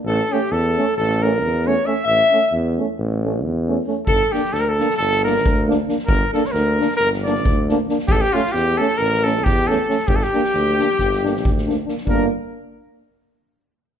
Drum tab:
SD |------------------|------------------|--ooo-oooooo--o-oo|--ooo-oooooo--o-oo|
BD |------------------|------------------|o-----------o-----|o-----------o-----|

SD |--ooo--oooo---o-oo|-ooooooooooo-oo-oo|------------------|
BD |o-----------o-----|o-------o---o-----|o-----------------|